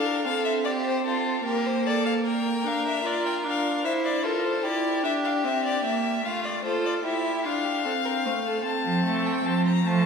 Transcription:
Already playing: D4 F5
0.06 A#4
0.25 C4 A4 F5
0.45 E5
0.65 G4 D5
0.85 C5
1.05 F4 A4
1.44 A#3 G4 A#4
1.66 C5
1.85 A4 D5
2.06 F5
2.26 A#4 G5
2.64 D4 F5
2.86 E5
3.04 F4 D5
3.26 G5
3.44 D4 F5
3.84 E4 C5 E5
4.05 D5
4.24 F4 A4 A#4
4.44 C5
4.63 E4 G4 D5
5.03 D4 E5
5.25 F5
5.44 C4 E5
5.65 D5
5.83 A#3 E5
6.24 A3 F4 F5
6.45 D5
6.64 F4 A4 C5
6.85 D5
7.04 E4 G4 E5
7.44 D4 F4 F5
7.65 G4
7.85 C4 A4
8.05 A#4
8.25 A3 C5
8.46 A4
8.65 C4 A5
8.85 F3
9.05 A3
9.26 G5
9.45 F3 A5
9.66 A#5
9.85 F3 A3 A5

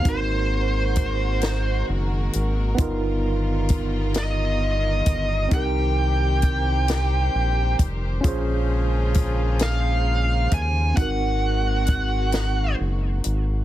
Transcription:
Already playing: A#3 A#4
0.02 G#1 D#3 G#3 C4 D#4 F#4, kick, closed hi-hat
0.07 F#4 A#4 C5
0.96 kick, closed hi-hat
1.41 snare, closed hi-hat
1.89 F#1
2.33 G#1, closed hi-hat
2.75 G3 B3 D#4 F4, kick, closed hi-hat
2.80 G1 F4 A#4
3.69 kick, closed hi-hat
4.14 D#5, snare, closed hi-hat
5.06 G1, kick, closed hi-hat
5.48 C2 C4 D#4 G4 C5, kick, closed hi-hat
5.54 G4 A#4 G5
6.42 kick, closed hi-hat
6.88 snare, closed hi-hat
7.35 A#1
7.79 F1, kick, closed hi-hat
8.21 C#3 F3 G#3 A#3 C#4 F4 G#4, kick, closed hi-hat
8.25 A#1 G#4 C5
9.14 kick, closed hi-hat
9.59 F5, snare, closed hi-hat
10.51 D#2 G#5, kick, closed hi-hat
10.94 G#1 D#3 G#3 C4 D#4 F#4 F#5, kick, closed hi-hat
10.99 F#4 A#4
11.86 kick, closed hi-hat
12.32 snare, closed hi-hat
12.80 F#1
13.24 G#1, closed hi-hat

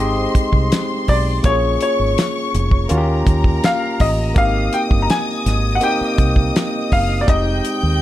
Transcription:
Already playing: G#1 G#3 C5 D#5 C6
0.00 C4 D#4 G4
0.35 muted fingered electric bass stroke, kick, closed hi-hat
0.53 C2, kick
0.72 snare, closed hi-hat
1.08 B1 D5, kick, open hi-hat
1.43 A#1 A#3 C#4 F4 G#4 C#5 C#6, kick, closed hi-hat
1.81 C#5, closed hi-hat
1.99 G#1
2.18 snare, closed hi-hat
2.54 F1, closed hi-hat
2.71 kick
2.89 D#2 A#3 C#4 F4 F#4 A#4 A#5, closed hi-hat
2.97 G4
3.27 D#2, kick, closed hi-hat
3.44 kick
3.64 F5, snare, closed hi-hat
4.00 A1 D#5, kick, open hi-hat
4.34 G#1 A#3 C4 D#4 G4 D#5 F5 D#6, kick, closed hi-hat
4.73 G5, closed hi-hat
4.91 G1, kick
5.02 A#5
5.10 G#5, snare, closed hi-hat
5.46 G#1, snare, closed hi-hat
5.75 F#5
5.80 A#3 C4 D#4 G4 G5, closed hi-hat
6.01 muted fingered electric bass stroke
6.18 C2, kick, closed hi-hat
6.36 kick
6.56 snare, closed hi-hat
6.92 F#1 F5, kick, open hi-hat
7.21 D5
7.26 F1 G#3 C4 D#4 G4 D#5 G5 G6, kick, closed hi-hat
7.65 closed hi-hat
7.83 D#2

